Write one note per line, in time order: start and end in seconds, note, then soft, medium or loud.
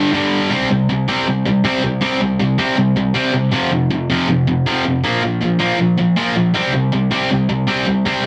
0.00 0.11 G2 medium
0.00 0.12 D3 medium
0.00 0.11 G3 medium
0.12 0.49 G2 medium
0.12 0.50 D3 medium
0.12 0.50 G3 loud
0.51 0.68 C3 loud
0.51 0.68 G3 loud
0.51 0.69 C4 loud
0.70 0.87 C3 medium
0.70 0.87 G3 medium
0.89 1.06 C3 medium
0.89 1.06 G3 medium
1.08 1.25 C3 medium
1.08 1.26 G3 medium
1.08 1.26 C4 loud
1.27 1.43 C3 medium
1.27 1.44 G3 medium
1.46 1.62 C3 medium
1.46 1.63 G3 medium
1.64 1.82 C3 medium
1.64 1.82 G3 medium
1.64 1.82 C4 loud
1.83 2.00 C3 medium
1.83 2.00 G3 medium
2.01 2.19 C3 medium
2.01 2.20 G3 loud
2.01 2.20 C4 loud
2.20 2.38 C3 medium
2.20 2.38 G3 medium
2.39 2.57 C3 medium
2.39 2.57 G3 medium
2.58 2.76 C3 loud
2.58 2.76 G3 loud
2.58 2.77 C4 loud
2.77 2.94 C3 medium
2.77 2.94 G3 medium
2.96 3.13 C3 medium
2.96 3.14 G3 medium
3.15 3.32 C3 medium
3.15 3.33 G3 medium
3.15 3.33 C4 loud
3.33 3.51 C3 medium
3.33 3.51 G3 medium
3.52 3.70 F2 medium
3.52 3.71 C3 loud
3.52 3.71 F3 loud
3.71 3.89 F2 medium
3.71 3.89 C3 medium
3.91 4.08 F2 medium
3.91 4.08 C3 loud
4.10 4.28 F2 medium
4.10 4.28 C3 loud
4.10 4.28 F3 loud
4.29 4.46 F2 medium
4.29 4.46 C3 medium
4.47 4.65 F2 medium
4.47 4.65 C3 medium
4.66 4.84 F2 medium
4.66 4.84 C3 loud
4.66 4.85 F3 loud
4.85 5.02 F2 medium
4.85 5.02 C3 medium
5.04 5.22 A#2 medium
5.04 5.22 F3 loud
5.04 5.22 A#3 loud
5.23 5.40 A#2 medium
5.23 5.40 F3 medium
5.41 5.58 A#2 medium
5.41 5.59 F3 medium
5.59 5.78 A#2 medium
5.59 5.78 F3 loud
5.59 5.78 A#3 loud
5.79 5.96 A#2 medium
5.79 5.96 F3 medium
5.98 6.15 A#2 medium
5.98 6.15 F3 medium
6.17 6.35 A#2 medium
6.17 6.35 F3 loud
6.17 6.35 A#3 loud
6.36 6.53 A#2 medium
6.36 6.53 F3 medium
6.54 6.72 C3 loud
6.54 6.73 G3 loud
6.54 6.73 C4 loud
6.74 6.91 C3 medium
6.74 6.91 G3 medium
6.93 7.10 C3 medium
6.93 7.10 G3 medium
7.11 7.29 C3 loud
7.11 7.29 G3 loud
7.11 7.29 C4 loud
7.31 7.47 C3 medium
7.31 7.47 G3 medium
7.49 7.66 C3 medium
7.49 7.66 G3 medium
7.67 7.85 C3 medium
7.67 7.85 G3 loud
7.67 7.86 C4 loud
7.86 8.03 C3 medium
7.86 8.04 G3 medium
8.05 8.23 C3 loud
8.05 8.23 G3 loud
8.05 8.23 C4 loud